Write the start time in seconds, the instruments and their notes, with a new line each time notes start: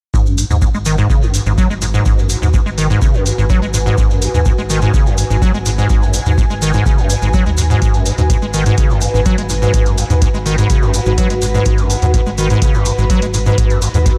0.14 analog synth bass G#1, acid bass G#2, ambient pad F#4, kick, maracas
0.26 acid bass F#2, maracas
0.34 ambient pad B4, open hi-hat, maracas
0.38 acid bass G#2
0.50 analog synth bass D#2, acid bass G#2, maracas
0.62 acid bass G#2, kick, maracas
0.74 analog synth bass G#1, acid bass G#3, maracas
0.85 acid bass D#3, open hi-hat, maracas
0.98 acid bass G#2, maracas
1.10 analog synth bass G#1, acid bass C#3, kick, maracas
1.22 acid bass F#2, maracas
1.30 ambient pad G#5, open hi-hat
1.34 acid bass G#2, maracas
1.46 analog synth bass G#1, acid bass G#2, maracas
1.58 acid bass F#3, kick, maracas
1.70 analog synth bass G#1, acid bass G#3, maracas
1.82 acid bass G#2, open hi-hat, maracas
1.94 acid bass G#2, maracas
2.05 analog synth bass G#1, acid bass G#2, kick, maracas
2.18 acid bass F#2, maracas
2.29 acid bass G#2, open hi-hat, maracas
2.42 analog synth bass D#2, acid bass G#2, maracas
2.54 acid bass G#2, kick, maracas
2.66 analog synth bass G#1, acid bass G#3, maracas
2.78 acid bass D#3, open hi-hat, maracas
2.90 acid bass G#2, maracas
3.02 analog synth bass G#1, acid bass C#3, kick, maracas
3.14 acid bass F#2, maracas
3.26 acid bass G#2, open hi-hat, maracas
3.38 analog synth bass G#1, acid bass G#2, maracas
3.50 acid bass F#3, kick, maracas
3.62 analog synth bass G#1, acid bass G#3, maracas
3.74 acid bass G#2, open hi-hat, maracas
3.86 acid bass G#2, maracas
3.98 analog synth bass G#1, acid bass G#2, kick, maracas
4.10 acid bass F#2, maracas
4.22 acid bass G#2, open hi-hat, maracas
4.34 analog synth bass D#2, acid bass G#2, maracas
4.45 acid bass G#2, kick, maracas
4.58 analog synth bass G#1, acid bass G#3, maracas
4.70 acid bass D#3, open hi-hat, maracas
4.81 acid bass G#2, maracas
4.94 analog synth bass G#1, acid bass C#3, kick, maracas
5.06 acid bass F#2, maracas
5.18 acid bass G#2, open hi-hat, maracas
5.30 analog synth bass G#1, acid bass G#2, maracas
5.42 acid bass F#3, kick, maracas
5.54 analog synth bass G#1, acid bass G#3, maracas
5.66 acid bass G#2, open hi-hat, maracas
5.78 acid bass G#2, maracas
5.89 analog synth bass G#1, acid bass G#2, kick, maracas
6.02 acid bass F#2, maracas
6.14 acid bass G#2, open hi-hat, maracas
6.26 analog synth bass D#2, acid bass G#2, maracas
6.38 acid bass G#2, kick, maracas
6.50 analog synth bass G#1, acid bass G#3, maracas
6.62 acid bass D#3, open hi-hat, maracas
6.73 acid bass G#2, maracas
6.86 analog synth bass G#1, acid bass C#3, kick, maracas
6.98 acid bass F#2, maracas
7.10 acid bass G#2, open hi-hat, maracas
7.22 analog synth bass G#1, acid bass G#2, maracas
7.33 acid bass F#3, kick, maracas
7.46 analog synth bass D#2, acid bass G#3, maracas
7.57 acid bass G#2, open hi-hat, maracas
7.70 acid bass G#2, maracas
7.82 analog synth bass G#1, kick, closed hi-hat, maracas
7.94 acid bass F#2, closed hi-hat, maracas
8.06 acid bass G#2, open hi-hat, maracas
8.18 analog synth bass D#2, acid bass G#2, closed hi-hat, maracas
8.30 acid bass G#2, kick, closed hi-hat, maracas
8.42 analog synth bass G#1, acid bass G#3, maracas
8.54 acid bass D#3, open hi-hat, maracas
8.66 acid bass G#2, closed hi-hat, maracas
8.78 analog synth bass G#1, acid bass C#3, kick, closed hi-hat, maracas
8.90 acid bass F#2, maracas
8.98 acid bass G#2, ambient pad B5, open hi-hat, maracas
9.14 analog synth bass G#1, acid bass G#2, maracas
9.26 acid bass F#3, kick, closed hi-hat, maracas
9.38 analog synth bass G#1, acid bass G#3, closed hi-hat, maracas
9.49 acid bass G#2, open hi-hat, maracas
9.62 acid bass G#2, maracas
9.74 analog synth bass G#1, acid bass G#2, kick, closed hi-hat, maracas
9.86 acid bass F#2, closed hi-hat, maracas
9.98 acid bass G#2, open hi-hat, maracas
10.10 analog synth bass D#2, acid bass G#2, closed hi-hat, maracas
10.22 acid bass G#2, kick, closed hi-hat, maracas
10.34 analog synth bass G#1, acid bass G#3, maracas
10.46 acid bass D#3, open hi-hat, maracas
10.58 acid bass G#2, closed hi-hat, maracas
10.70 analog synth bass G#1, acid bass C#3, kick, closed hi-hat, maracas
10.82 acid bass F#2, maracas
10.94 acid bass G#2, open hi-hat, maracas
11.06 analog synth bass G#1, acid bass G#2, maracas
11.18 acid bass F#3, kick, closed hi-hat, maracas
11.30 analog synth bass G#1, acid bass G#3, closed hi-hat, maracas
11.42 acid bass G#2, open hi-hat, maracas
11.54 acid bass G#2, maracas
11.65 analog synth bass G#1, acid bass G#2, kick, closed hi-hat, maracas
11.78 acid bass F#2, closed hi-hat, maracas
11.90 acid bass G#2, open hi-hat, maracas
12.02 analog synth bass D#2, acid bass G#2, closed hi-hat, maracas
12.14 acid bass G#2, kick, closed hi-hat, maracas
12.26 analog synth bass G#1, acid bass G#3, maracas
12.38 acid bass D#3, open hi-hat, maracas
12.50 acid bass G#2, closed hi-hat, maracas
12.62 analog synth bass G#1, acid bass C#3, kick, closed hi-hat, maracas
12.74 acid bass F#2, maracas
12.85 acid bass G#2, open hi-hat, maracas
12.98 analog synth bass G#1, acid bass G#2, maracas
13.10 acid bass F#3, kick, closed hi-hat, maracas
13.22 analog synth bass G#1, acid bass G#3, closed hi-hat, maracas
13.34 acid bass G#2, open hi-hat, maracas
13.46 acid bass G#2, maracas
13.58 analog synth bass G#1, acid bass G#2, kick, closed hi-hat, maracas
13.70 acid bass F#2, closed hi-hat, maracas
13.82 acid bass G#2, open hi-hat, maracas
13.94 analog synth bass D#2, acid bass G#2, closed hi-hat, maracas
14.06 acid bass G#2, kick, closed hi-hat, maracas